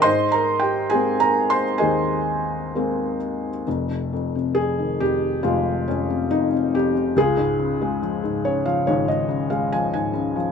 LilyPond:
<<
  \new Staff \with { instrumentName = "Felt piano" } { \time 4/4 \key c \phrygian \tempo 4 = 69 << { \tuplet 3/2 { c'''8 bes''8 g''8 aes''8 bes''8 c'''8 } aes''4. r8 | \key f \minor r4 aes'8 g'8 f'8 des'8 ees'8 g'8 | aes'4 r8 des''16 f''16 des''16 ees''8 f''16 aes''16 aes''8. | } \\ { \tuplet 3/2 { <c'' ees''>8 bes'8 g'8 aes'8 bes'8 c''8 } <aes' c'' ees''>4. r8 | r2 aes2 | f'2 r2 | } >> }
  \new Staff \with { instrumentName = "Felt piano" } { \clef bass \time 4/4 \key c \phrygian aes,4 <aes bes c'>4 ees,4 <aes bes c'>4 | \key f \minor <f,, f,>16 c16 f,16 c16 f,16 ees16 f,8 <f,, f,>8 f,16 c16 f,16 c16 f,16 c16 | des,16 aes,16 des16 aes16 f16 aes,16 des16 f16 <aes,, aes,>16 aes,16 des16 aes16 f16 aes,16 des16 f16 | }
>>